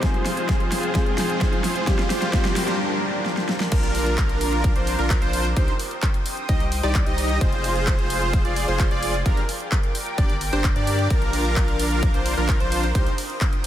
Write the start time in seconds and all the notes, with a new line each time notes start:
Already playing: riser
0.01 F3 G#3 C4 F4 G#4 C5, kick, snare, closed hi-hat
0.14 closed hi-hat
0.26 snare, open hi-hat
0.37 closed hi-hat
0.49 kick, snare, closed hi-hat
0.60 closed hi-hat
0.72 snare, open hi-hat
0.83 closed hi-hat
0.94 G#3 C4 F4 G#4 C5, kick, snare, closed hi-hat
1.06 closed hi-hat
1.18 snare, open hi-hat
1.29 closed hi-hat
1.41 kick, snare, closed hi-hat
1.53 closed hi-hat
1.64 snare, open hi-hat
1.76 closed hi-hat
1.86 G3 C4 D4 F4 G4 A#4 C5, kick, snare, closed hi-hat
1.99 snare, closed hi-hat
2.10 snare, open hi-hat
2.22 snare, closed hi-hat
2.32 G3 C4 F4 G4 C5, kick, snare, closed hi-hat
2.45 snare, closed hi-hat
2.56 snare, open hi-hat
2.68 snare, closed hi-hat
3.26 snare
3.37 snare
3.49 snare
3.60 snare
3.72 A#1 D4 F4 A#4 F5 D6, kick, closed hi-hat, crash
3.83 closed hi-hat
3.95 open hi-hat
4.06 closed hi-hat
4.18 kick, clap, closed hi-hat
4.29 closed hi-hat
4.41 open hi-hat
4.52 closed hi-hat
4.64 kick, closed hi-hat
4.76 A#1 D4 F4 C5, closed hi-hat
4.87 open hi-hat
4.99 A#1 D4 F4 A#4, closed hi-hat
5.10 kick, clap, closed hi-hat
5.22 A#1 D4 F4 C5, closed hi-hat
5.33 open hi-hat
5.45 closed hi-hat
5.56 C2 D#4 G4 C5 G5 D#6, kick, closed hi-hat
5.68 closed hi-hat
5.79 open hi-hat
5.91 closed hi-hat
6.02 kick, clap, closed hi-hat
6.14 closed hi-hat
6.26 open hi-hat
6.37 closed hi-hat
6.49 C2 D#4 G4 D#5, kick, closed hi-hat
6.60 closed hi-hat
6.72 open hi-hat
6.83 C2 D#4 G4 D5, closed hi-hat
6.95 kick, clap, closed hi-hat
7.06 C2 D#4 G4 D#5, closed hi-hat
7.18 open hi-hat
7.41 F1 F4 G#4 C5 F5 C6, kick, closed hi-hat
7.53 closed hi-hat
7.64 open hi-hat
7.76 closed hi-hat
7.87 kick, clap, closed hi-hat
7.99 closed hi-hat
8.10 open hi-hat
8.22 closed hi-hat
8.33 kick, closed hi-hat
8.45 F1 F4 G#4 D5, closed hi-hat
8.56 open hi-hat
8.68 F1 F4 G#4 C5, closed hi-hat
8.79 kick, clap, closed hi-hat
8.91 F1 F4 G#4 D5, closed hi-hat
9.03 open hi-hat
9.14 closed hi-hat
9.26 G1 D4 G4 A#4 G5 D6, kick, closed hi-hat
9.37 closed hi-hat
9.49 open hi-hat
9.60 closed hi-hat
9.72 kick, clap, closed hi-hat
9.83 closed hi-hat
9.95 open hi-hat
10.06 closed hi-hat
10.18 G1 D4 G4 D5, kick, closed hi-hat
10.30 closed hi-hat
10.41 open hi-hat
10.53 G1 D4 G4 C5, closed hi-hat
10.64 kick, clap, closed hi-hat
10.76 G2 D4 G4 D5, closed hi-hat
10.87 open hi-hat
10.99 closed hi-hat
11.10 A#1 D4 F4 A#4 F5, kick, closed hi-hat, ride
11.22 closed hi-hat
11.33 open hi-hat, ride
11.45 closed hi-hat
11.56 kick, clap, closed hi-hat, ride
11.68 closed hi-hat
11.79 open hi-hat, ride
12.03 kick, closed hi-hat, ride
12.14 A#1 D4 F4 C5, closed hi-hat
12.26 open hi-hat, ride
12.37 A#1 D4 F4 A#4, closed hi-hat
12.49 kick, clap, closed hi-hat, ride
12.60 A#1 D4 F4 C5, closed hi-hat
12.72 open hi-hat, ride
12.83 closed hi-hat
12.95 C2 D#4 G4 C5 G5 D#6, kick, closed hi-hat, ride
13.07 closed hi-hat
13.18 open hi-hat, ride
13.30 closed hi-hat
13.41 kick, clap, closed hi-hat, ride
13.53 closed hi-hat